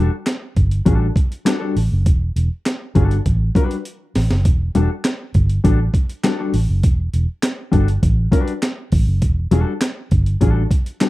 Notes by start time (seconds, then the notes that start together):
Already playing: D4 F#4 A4
0.27 snare, clap, closed hi-hat
0.56 G1, kick, closed hi-hat
0.71 closed hi-hat
0.85 A1 G3 D4 F#4 A4, kick, closed hi-hat
1.16 kick, closed hi-hat
1.32 closed hi-hat
1.45 G3 D4 F#4 A4, snare, clap, closed hi-hat
1.60 G3 D4 F#4 A4
1.76 A1, open hi-hat
1.92 F#1
2.06 E1, kick, closed hi-hat
2.36 E1, closed hi-hat
2.66 snare, clap, closed hi-hat
2.95 G1 G3 D4 F#4 A4, kick, closed hi-hat
3.11 closed hi-hat
3.26 A1, kick, closed hi-hat
3.55 G3 D4 F#4 B4, kick, closed hi-hat
3.71 closed hi-hat
3.85 closed hi-hat
4.15 A1, snare, open hi-hat
4.30 F#1, snare
4.45 E1, kick, closed hi-hat
4.75 E1 G3 D4 F#4 A4, closed hi-hat
5.05 snare, clap, closed hi-hat
5.34 G1, kick, closed hi-hat
5.49 closed hi-hat
5.64 A1 G3 D4 F#4 A4, kick, closed hi-hat
5.94 kick, closed hi-hat
6.09 closed hi-hat
6.24 G3 D4 F#4 A4, snare, clap, closed hi-hat
6.39 G3 D4 F#4 A4
6.54 A1, open hi-hat
6.69 F#1
6.83 E1, kick, closed hi-hat
7.14 E1, closed hi-hat
7.43 snare, clap, closed hi-hat
7.72 G1 G3 D4 F#4 A4, kick, closed hi-hat
7.88 closed hi-hat
8.03 A1, kick, closed hi-hat
8.32 G3 D4 F#4 B4, kick, closed hi-hat
8.48 closed hi-hat
8.62 snare, clap, closed hi-hat
8.92 A1, kick, open hi-hat
9.07 F#1
9.22 E1, kick, closed hi-hat
9.51 E1 G3 D4 F#4 A4, closed hi-hat
9.81 snare, clap, closed hi-hat
10.11 G1, kick, closed hi-hat
10.26 closed hi-hat
10.41 A1 G3 D4 F#4 A4, kick, closed hi-hat
10.71 kick, closed hi-hat
10.86 closed hi-hat
11.01 G3 D4 F#4 A4, snare, clap, closed hi-hat